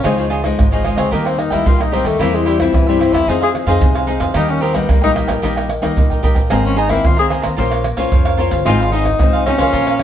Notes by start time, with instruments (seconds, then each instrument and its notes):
0.03 upright bass C#2, nylon-string guitar C#3 F3 G#3 D#4, tenor saxophone C4, cavaquinho F4 G#4 C#5 D#5, pandeiro, tamborim, maracas, surdo
0.17 tenor saxophone F3, cavaquinho G#4 C#5 D#5, pandeiro, maracas
0.30 cavaquinho F4 G#4 C#5 D#5, pandeiro
0.43 nylon-string guitar F3 G#3 D#4, muted cavaquinho stroke, pandeiro, tamborim, maracas, surdo
0.58 upright bass G#1, nylon-string guitar G#2, pandeiro, tamborim, maracas, surdo
0.71 nylon-string guitar F3 G#3 D#4, cavaquinho G#4 C#5 D#5, pandeiro, maracas
0.84 cavaquinho F4 G#4 C#5 D#5, pandeiro, tamborim, maracas
0.96 upright bass C#2, tenor saxophone C4, cavaquinho G#4 C#5 D#5, pandeiro, tamborim, maracas, surdo
1.11 upright bass D#2, nylon-string guitar D#3 G3 A#3 D#4, tenor saxophone A#3, cavaquinho G4 A#4 D#5 G5, pandeiro, maracas, surdo
1.25 tenor saxophone C4, cavaquinho A#4 D#5 G5, pandeiro, tamborim, maracas
1.38 tenor saxophone D#4, muted cavaquinho stroke, pandeiro, tamborim, maracas
1.50 upright bass D#2, nylon-string guitar G3 A#3 D#4, tenor saxophone E4, cavaquinho A#4 D#5 G5, pandeiro, maracas, surdo
1.66 upright bass A#1, nylon-string guitar A#2, tenor saxophone F4, pandeiro, maracas, surdo
1.79 tenor saxophone D#4, cavaquinho A#4 D#5 G5, pandeiro, tamborim, maracas
1.92 nylon-string guitar G3 A#3 D#4, tenor saxophone C4, cavaquinho G4 A#4 D#5 G5, pandeiro, maracas
2.04 upright bass D#2, tenor saxophone A3, cavaquinho A#4 D#5 G5, pandeiro, maracas, surdo
2.19 upright bass E2, nylon-string guitar E3 G3 C4 E4, tenor saxophone A#3, cavaquinho E4 G4 C5 E5, pandeiro, tamborim, maracas, surdo
2.33 tenor saxophone G#3, cavaquinho G4 C5 E5, pandeiro, maracas
2.45 tenor saxophone G3, cavaquinho E4 G4 C5 E5, pandeiro, maracas
2.58 tenor saxophone F3, nylon-string guitar G3 C4 E4, muted cavaquinho stroke, pandeiro, tamborim, maracas, surdo
2.73 upright bass G2, tenor saxophone E3, nylon-string guitar E3, pandeiro, tamborim, maracas, surdo
2.87 tenor saxophone G3, nylon-string guitar G3 C4 E4, cavaquinho G4 C5 E5, pandeiro, maracas
2.99 tenor saxophone C4, cavaquinho E4 G4 C5 E5, pandeiro, tamborim
3.12 upright bass E2, tenor saxophone E4, cavaquinho G4 C5 E5, pandeiro, tamborim, maracas, surdo
3.27 upright bass F2, nylon-string guitar F3 C4 D#4 G#4, cavaquinho D#4 G#4 C5 F5, tenor saxophone D#4, pandeiro, maracas, surdo
3.41 cavaquinho G#4 C5 F5, tenor saxophone G#4, pandeiro, tamborim, maracas
3.53 muted cavaquinho stroke, pandeiro, tamborim, maracas
3.66 upright bass F2, nylon-string guitar C4 D#4 G#4, cavaquinho G#4 C5 F5, pandeiro, maracas, surdo
3.81 upright bass C2, nylon-string guitar C3, pandeiro, maracas, surdo
3.94 cavaquinho G#4 C5 F5, pandeiro, tamborim, maracas
4.07 nylon-string guitar C4 D#4 G#4, cavaquinho D#4 G#4 C5 F5, pandeiro
4.20 upright bass F2, cavaquinho G#4 C5 F5, pandeiro, maracas, surdo
4.34 upright bass D#2, nylon-string guitar D#3 G3 A#3 D#4, tenor saxophone D#4, cavaquinho G4 A#4 D#5 G5, pandeiro, tamborim, maracas, surdo
4.48 tenor saxophone C#4, cavaquinho A#4 D#5 G5, pandeiro, maracas
4.61 tenor saxophone C4, cavaquinho G4 A#4 D#5 G5, pandeiro, maracas
4.73 nylon-string guitar G3 A#3 D#4, tenor saxophone B3, muted cavaquinho stroke, pandeiro, tamborim, maracas, surdo
4.89 upright bass A#1, nylon-string guitar A#2, tenor saxophone A#3, pandeiro, tamborim, maracas, surdo
5.02 nylon-string guitar G3 A#3 D#4, tenor saxophone D#4, cavaquinho A#4 D#5 G5, pandeiro, maracas
5.14 cavaquinho G4 A#4 D#5 G5, pandeiro, tamborim, maracas, surdo
5.28 upright bass A#1, cavaquinho A#4 D#5 G5, pandeiro, tamborim, maracas, surdo
5.42 upright bass A#1, nylon-string guitar D#3 G3 A#3 D#4, cavaquinho G4 A#4 D#5 G5, pandeiro, maracas, surdo
5.56 cavaquinho A#4 D#5 G5, pandeiro, tamborim, maracas
5.69 muted cavaquinho stroke, pandeiro, tamborim
5.82 upright bass D#2, nylon-string guitar G3 A#3 D#4, cavaquinho A#4 D#5 G5, pandeiro, tamborim, maracas, surdo
5.97 upright bass C2, nylon-string guitar A#2, pandeiro, maracas, surdo
6.10 cavaquinho A#4 D#5 G5, pandeiro, maracas, surdo
6.23 upright bass A#1, nylon-string guitar G3 A#3 D#4, cavaquinho G4 A#4 D#5 G5, pandeiro, maracas, surdo
6.35 cavaquinho A#4 D#5 G5, pandeiro, maracas, surdo
6.50 upright bass G#1, nylon-string guitar G#2 D#3 A#3 C4, cavaquinho G#4 C5 A#5, pandeiro, tamborim, maracas, surdo
6.64 tenor saxophone C#4, cavaquinho C5 A#5, pandeiro, maracas
6.76 tenor saxophone D#4, cavaquinho G#4 C5 A#5, pandeiro, maracas
6.89 nylon-string guitar D#3 A#3 C4, tenor saxophone E4, muted cavaquinho stroke, pandeiro, tamborim, maracas, surdo
7.04 upright bass D#2, nylon-string guitar D#3, tenor saxophone F4, pandeiro, tamborim, maracas, surdo
7.17 nylon-string guitar D#3 A#3 C4, tenor saxophone G#4, cavaquinho C5 A#5, pandeiro, maracas
7.29 cavaquinho G#4 C5 A#5, pandeiro, tamborim, maracas, surdo
7.42 upright bass D#2, cavaquinho C5 A#5, pandeiro, tamborim, maracas, surdo
7.56 upright bass A#1, nylon-string guitar A#3 C#4 F4 C5, cavaquinho F4 A#4 C#5 F5, pandeiro, maracas, surdo
7.70 cavaquinho A#4 C#5 F5, pandeiro, tamborim, maracas
7.84 muted cavaquinho stroke, pandeiro, tamborim, maracas
7.97 upright bass A#1, nylon-string guitar C#4 F4 C5, cavaquinho A#4 C#5 F5, pandeiro, maracas, surdo
8.12 upright bass F2, nylon-string guitar F3, pandeiro, maracas, surdo
8.25 cavaquinho A#4 C#5 F5, pandeiro, tamborim, maracas
8.37 nylon-string guitar C#4 F4 C5, cavaquinho F4 A#4 C#5 F5, pandeiro, maracas
8.50 upright bass G1, cavaquinho A#4 C#5 F5, pandeiro, maracas, surdo
8.65 upright bass G#1, nylon-string guitar G#2 F3 C4 D#4, cavaquinho D#4 G#4 C5 F5, tenor saxophone F4, pandeiro, tamborim, maracas, surdo
8.80 cavaquinho G#4 C5 F5, pandeiro, maracas
8.92 nylon-string guitar F3 C4 D#4, tenor saxophone D#4, cavaquinho D#4 G#4 C5 F5, pandeiro, maracas
9.05 muted cavaquinho stroke, pandeiro, tamborim, maracas, surdo
9.19 upright bass C2, nylon-string guitar G#2 F3 C4 D#4, pandeiro, tamborim, maracas, surdo
9.33 cavaquinho G#4 C5 F5, pandeiro, maracas
9.45 nylon-string guitar F3 C4 D#4, tenor saxophone C#4, cavaquinho D#4 G#4 C5 F5, pandeiro, tamborim, maracas, surdo
9.58 upright bass C2, nylon-string guitar F3 A#3 C#4, cavaquinho G#4 C5 F5, pandeiro, tamborim, maracas, surdo
9.73 upright bass A#1, nylon-string guitar A#2, cavaquinho F4 A#4 C#5 F5, pandeiro, maracas, surdo
9.87 cavaquinho A#4 C#5 F5, pandeiro, tamborim, maracas
9.99 muted cavaquinho stroke, pandeiro, tamborim